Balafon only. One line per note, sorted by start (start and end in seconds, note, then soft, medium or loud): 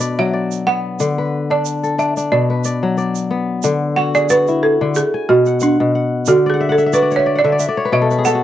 0.00 0.21 D5 medium
0.19 0.68 E5 medium
0.67 1.53 F#5 medium
1.51 2.00 D5 medium
1.99 2.33 E5 medium
2.32 2.94 D5 medium
3.96 4.15 F#5 medium
4.15 4.21 D5 loud
4.30 4.64 B4 loud
4.63 4.96 A4 medium
4.96 5.30 G#4 medium
5.29 5.62 F#4 medium
5.63 5.93 D4 medium
6.28 6.38 F#4 medium
6.50 6.72 G#4 medium
6.72 6.92 A4 medium
6.94 7.16 B4 medium
7.16 7.38 C#5 medium
7.39 7.89 D5 medium
7.93 8.26 E5 medium
8.25 8.44 F#5 loud